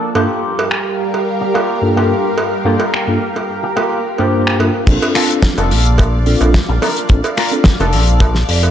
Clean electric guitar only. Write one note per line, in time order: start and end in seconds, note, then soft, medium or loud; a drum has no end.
0.15 0.60 A#3 medium
0.15 0.61 F4 medium
0.15 0.61 G4 medium
0.71 muted clean electric guitar stroke soft
1.13 muted clean electric guitar stroke soft
1.41 muted clean electric guitar stroke medium
1.54 1.75 A#3 medium
1.54 1.76 F4 medium
1.54 1.76 G4 medium
1.96 2.31 A#3 medium
1.96 2.31 F4 medium
1.96 2.31 G4 medium
2.65 2.80 A#3 loud
2.65 2.80 F4 medium
2.65 2.80 G4 medium
2.93 muted clean electric guitar stroke soft
3.35 muted clean electric guitar stroke soft
3.63 muted clean electric guitar stroke medium
3.76 3.98 A#3 medium
3.76 3.98 F4 medium
3.76 3.98 G4 medium
4.19 4.53 A#3 medium
4.19 4.54 F4 medium
4.19 4.54 G4 medium
5.15 5.30 A#3 loud
5.15 5.30 D4 medium
5.15 5.30 F4 loud
5.15 5.30 A4 loud
5.43 muted clean electric guitar stroke soft
5.58 6.13 A#3 medium
5.58 6.14 D4 medium
5.58 6.14 F4 medium
5.58 6.14 A4 medium
6.69 muted clean electric guitar stroke medium
6.82 7.10 A#3 loud
6.82 7.10 D4 loud
6.82 7.10 F4 loud
6.82 7.10 A#4 loud
7.37 7.52 A#3 loud
7.37 7.52 D4 medium
7.37 7.52 F4 loud
7.37 7.53 A#4 loud
7.65 muted clean electric guitar stroke soft
7.80 8.36 A#3 medium
7.80 8.36 D4 medium
7.80 8.36 F4 medium
7.80 8.36 A4 medium